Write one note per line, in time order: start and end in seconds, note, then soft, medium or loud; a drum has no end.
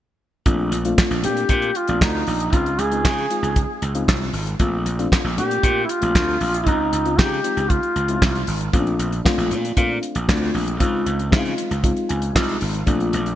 0.46 0.67 A#1 loud
0.46 0.76 A3 medium
0.46 0.77 C4 medium
0.46 0.77 D4 medium
0.46 0.77 F4 medium
0.46 kick loud
0.46 closed hi-hat medium
0.72 0.92 A#1 medium
0.72 closed hi-hat medium
0.85 1.16 A3 medium
0.85 1.16 C4 medium
0.85 1.16 D4 medium
0.85 1.16 F4 loud
0.85 closed hi-hat soft
0.98 kick loud
0.98 snare loud
0.98 clap medium
1.11 1.25 A#1 medium
1.11 closed hi-hat soft
1.24 1.44 A#2 medium
1.24 1.75 A3 medium
1.24 1.75 C4 medium
1.24 1.75 D4 medium
1.24 1.75 F4 medium
1.24 1.78 G4 medium
1.24 closed hi-hat medium
1.37 closed hi-hat medium
1.49 1.70 A#2 loud
1.49 kick medium
1.49 closed hi-hat medium
1.62 closed hi-hat soft
1.75 2.02 F4 medium
1.75 closed hi-hat medium
1.88 1.99 A#1 medium
1.88 2.39 A3 medium
1.88 2.39 C4 medium
1.88 2.40 F4 medium
1.88 2.40 D5 medium
1.88 closed hi-hat medium
2.01 2.22 D2 medium
2.01 2.55 D#4 medium
2.01 kick loud
2.01 snare loud
2.01 clap loud
2.27 2.48 A#1 medium
2.27 open hi-hat medium
2.40 closed hi-hat medium
2.53 2.73 C#2 loud
2.53 2.83 G#3 medium
2.53 2.83 C4 medium
2.53 2.84 D#4 medium
2.53 2.81 F4 loud
2.53 2.84 F4 medium
2.53 kick loud
2.53 closed hi-hat medium
2.66 closed hi-hat soft
2.79 3.06 C#2 medium
2.79 3.82 G#4 loud
2.79 closed hi-hat medium
2.91 3.22 G#3 medium
2.91 3.22 C4 medium
2.91 3.22 D#4 medium
2.91 3.22 F4 medium
2.91 closed hi-hat soft
3.05 3.25 C#3 loud
3.05 kick loud
3.05 snare loud
3.05 clap medium
3.30 3.81 G#3 medium
3.30 3.81 C4 medium
3.30 3.81 D#4 medium
3.30 3.82 F4 medium
3.30 closed hi-hat medium
3.43 3.64 C#2 medium
3.43 closed hi-hat medium
3.56 kick loud
3.56 closed hi-hat medium
3.82 4.03 C#2 loud
3.82 closed hi-hat medium
3.95 4.46 G#3 medium
3.95 4.46 C4 medium
3.95 4.46 D#4 medium
3.95 4.46 F4 medium
3.95 closed hi-hat medium
4.08 4.29 C2 medium
4.08 kick loud
4.08 snare loud
4.08 clap medium
4.33 4.54 G#1 medium
4.33 open hi-hat medium
4.47 closed hi-hat medium
4.60 4.81 A#1 loud
4.60 4.90 A3 medium
4.60 4.90 C4 medium
4.60 4.91 D4 medium
4.60 4.91 F4 medium
4.60 kick loud
4.60 closed hi-hat medium
4.85 5.06 A#1 medium
4.85 closed hi-hat medium
4.99 5.29 A3 medium
4.99 5.29 C4 medium
4.99 5.29 D4 medium
4.99 5.30 F4 loud
4.99 closed hi-hat soft
5.12 kick loud
5.12 snare loud
5.12 clap medium
5.24 5.39 A#1 medium
5.37 5.58 A#2 medium
5.37 5.88 A3 medium
5.37 5.88 C4 medium
5.37 5.88 D4 medium
5.37 5.89 F4 medium
5.37 5.79 G4 loud
5.37 closed hi-hat medium
5.51 closed hi-hat medium
5.63 5.84 A#2 loud
5.63 kick loud
5.63 closed hi-hat medium
5.84 5.92 E4 medium
5.89 6.68 F4 loud
5.89 closed hi-hat medium
6.01 6.13 A#1 medium
6.01 6.53 A3 medium
6.01 6.53 C4 medium
6.01 6.53 D4 medium
6.01 6.53 F4 medium
6.01 closed hi-hat medium
6.15 6.36 D2 medium
6.15 kick loud
6.15 snare loud
6.15 clap medium
6.41 6.61 A#1 medium
6.41 open hi-hat medium
6.54 closed hi-hat soft
6.66 6.87 C#2 loud
6.66 6.97 G#3 medium
6.66 6.97 C4 medium
6.66 7.20 D#4 loud
6.66 6.97 D#4 medium
6.66 6.97 F4 medium
6.66 kick medium
6.66 closed hi-hat medium
6.92 7.20 C#2 medium
6.92 closed hi-hat medium
7.05 7.36 G#3 medium
7.05 7.36 C4 medium
7.05 7.36 D#4 medium
7.05 7.36 F4 medium
7.05 closed hi-hat soft
7.18 7.39 C#3 loud
7.18 7.72 G4 medium
7.18 kick loud
7.18 snare loud
7.18 clap medium
7.44 7.95 G#3 medium
7.44 7.95 C4 medium
7.44 7.95 D#4 medium
7.44 7.95 F4 medium
7.44 closed hi-hat medium
7.57 7.78 C#2 medium
7.57 closed hi-hat medium
7.70 8.48 F4 medium
7.70 kick medium
7.70 closed hi-hat medium
7.83 closed hi-hat soft
7.96 8.17 C#2 medium
7.96 closed hi-hat medium
8.08 8.60 G#3 medium
8.08 8.60 C4 medium
8.08 8.60 D#4 medium
8.08 8.15 E4 medium
8.08 closed hi-hat medium
8.15 8.63 F4 medium
8.22 8.43 C2 medium
8.22 kick loud
8.22 snare loud
8.22 clap medium
8.35 closed hi-hat soft
8.47 8.68 G#1 loud
8.47 open hi-hat medium
8.61 closed hi-hat medium
8.73 8.94 A#1 loud
8.73 9.14 A3 medium
8.73 9.14 C4 medium
8.73 8.80 C#4 medium
8.73 9.14 F4 loud
8.73 kick loud
8.73 closed hi-hat medium
8.79 9.17 D4 medium
8.87 closed hi-hat soft
8.99 9.20 A#1 loud
8.99 closed hi-hat medium
9.12 closed hi-hat soft
9.25 9.66 A3 medium
9.25 9.66 C4 medium
9.25 9.66 D4 medium
9.25 9.66 F4 loud
9.25 kick loud
9.25 snare loud
9.25 clap medium
9.38 9.52 A#1 medium
9.38 closed hi-hat soft
9.51 9.72 A#2 loud
9.51 closed hi-hat medium
9.65 closed hi-hat medium
9.76 9.98 A#2 loud
9.76 10.18 A3 medium
9.76 10.18 C4 medium
9.76 10.18 D4 medium
9.76 10.18 F4 medium
9.76 kick loud
9.76 closed hi-hat medium
10.03 closed hi-hat medium
10.15 10.26 A#1 medium
10.15 closed hi-hat medium
10.28 10.50 D2 medium
10.28 10.69 A3 medium
10.28 10.69 C4 medium
10.28 10.69 D4 medium
10.28 10.70 F4 loud
10.28 kick loud
10.28 snare loud
10.28 clap medium
10.54 10.75 A#1 loud
10.54 open hi-hat medium
10.68 closed hi-hat medium
10.79 11.01 C#2 loud
10.79 11.21 G#3 medium
10.79 11.21 C4 medium
10.79 11.21 D#4 medium
10.79 11.21 F4 loud
10.79 kick medium
10.79 closed hi-hat medium
11.06 11.34 C#2 medium
11.06 closed hi-hat medium
11.19 closed hi-hat soft
11.31 11.53 C#3 medium
11.31 11.72 G#3 medium
11.31 11.73 C4 medium
11.31 11.73 D#4 medium
11.31 11.38 E4 medium
11.31 kick loud
11.31 snare loud
11.31 clap medium
11.38 11.76 F4 loud
11.45 closed hi-hat soft
11.58 closed hi-hat medium
11.71 11.92 C#2 medium
11.71 closed hi-hat medium
11.83 12.24 G#3 medium
11.83 12.24 C4 medium
11.83 12.25 D#4 medium
11.83 12.25 F4 medium
11.83 kick loud
11.83 closed hi-hat medium
11.97 closed hi-hat soft
12.09 12.31 C#2 medium
12.09 12.33 G#5 medium
12.09 closed hi-hat medium
12.22 closed hi-hat medium
12.35 12.56 C2 loud
12.35 12.76 G#3 medium
12.35 12.76 C4 medium
12.35 12.76 D#4 medium
12.35 12.77 F4 loud
12.35 12.84 F5 medium
12.35 kick loud
12.35 snare loud
12.35 clap loud
12.49 closed hi-hat soft
12.61 12.82 G#1 medium
12.61 open hi-hat medium
12.74 closed hi-hat medium
12.86 13.08 A#1 loud
12.86 13.28 A3 medium
12.86 13.28 C4 medium
12.86 13.28 D4 medium
12.86 13.28 F4 medium
12.86 kick loud
12.86 closed hi-hat medium
13.00 closed hi-hat soft
13.13 13.34 A#1 medium
13.13 closed hi-hat medium
13.26 closed hi-hat soft